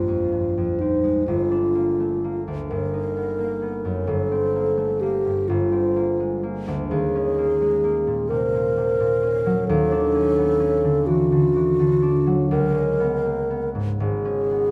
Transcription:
Already playing: A#1 G2 A#3 C4 F4
0.08 F2
0.32 G2
0.58 F2
0.80 C4 D#4
1.04 G#3
1.28 G1 F4
1.51 D4
1.75 A#3
2.00 A3
2.24 A#3
2.48 D2
2.69 G1 A#4
2.94 D#4
3.16 B3
3.39 A#3
3.62 B3
3.85 F#2
4.07 G1 A4
4.32 C4
4.55 A#3
4.78 A3
5.01 A#3 G4
5.26 G2
5.48 G1 F4
5.72 C4
5.96 A#3
6.20 G#3
6.43 A#3
6.68 D2
6.90 D#2 G#4
7.15 C#4
7.38 A#3
7.61 G#3
7.84 A#3
8.07 A#2
8.29 C3 A#4
8.53 A#2
8.77 C3
9.00 A#2
9.23 C#4
9.46 F#3
9.68 D#2 A4
9.92 D4
10.15 C#4
10.38 B3
10.60 C#4
10.84 D3
11.07 E3 F#4
11.32 D3
11.55 E3
11.80 D3
12.02 D4
12.27 F#3
12.50 C#2 A#4
12.74 C#4
13.00 B3
13.25 A#3
13.50 B3
13.75 G#2
14.00 G#1 G#4
14.25 C#4
14.51 B3

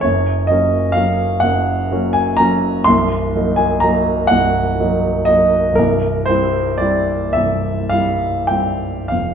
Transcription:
0.01 F#1 F#2 C#5
0.47 F#3 A#3 C#4 D#5
0.92 F#3 A#3 F5
0.97 C#4
1.40 F#1 F#2 F#5
1.92 F#3 A#3 C#4
2.13 G#5
2.37 F#3 A#3 C#4 A#5
2.84 C1 C2 C6
3.35 F#3 A#3 D#4
3.56 G#5
3.80 F#3 A#3 D#4 A#5
4.27 C1 C2 F#5
4.80 F#3 A#3 D#4
5.25 F#3 A#3 D#5
5.29 D#4
5.73 C1 A#4
5.79 C2
6.26 G3 C5
6.30 C4 E4
6.78 G3 C4 E4 D5
7.33 C1 C2 E5
7.89 G3 C4 E4 F5
8.47 G3 G5
8.51 C4 E4
9.08 F1 F2 F5

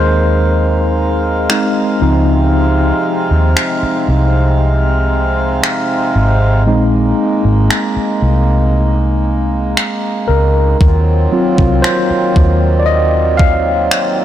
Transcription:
Already playing: D#2 G#3 C4 D#4 G#4 A#4 C5 F5
1.50 G#3 C4 D#4, finger snap
2.01 C#2 C3 F3 C4 D#4
3.31 D#2
3.57 finger snap
3.83 muted fingered electric bass stroke
4.08 C2
5.63 finger snap
6.15 G#1
6.67 A#1 G#3 A#3 C4 D#4
7.45 G#1
7.71 finger snap
7.96 muted fingered electric bass stroke
8.22 C2
9.77 finger snap
10.28 C#2 A#4
10.81 D#2 D#3 F#3 A#3 C4 F4, kick
11.32 F#3 C4 F4
11.58 C2, kick
11.82 C5, finger snap
12.10 muted fingered electric bass stroke
12.36 D#2, kick
12.79 D5
12.86 D#5
13.37 F5, kick
13.91 finger snap

